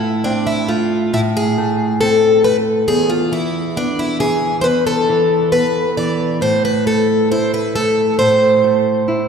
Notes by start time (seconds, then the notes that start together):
Already playing: A2 A3 E4
0.24 C4 D4
0.47 E4
0.69 A3 F4
1.13 A2 E4
1.37 G#4
1.58 A3
2.01 C4 A4
2.44 A3 B4
2.88 E2 G#4
3.10 F4
3.32 E3 E4
3.76 B3 D4
3.99 E4
4.20 E3 G#4
4.61 E2 B4 C5
4.87 A4
5.09 E3
5.52 B3 B4
5.97 E3 D5
6.41 A2 C5
6.65 B4
6.86 A3 A4
7.32 E4 C5
7.54 B4
7.76 A3 A4
8.19 A2 C5
8.64 A3
9.08 E4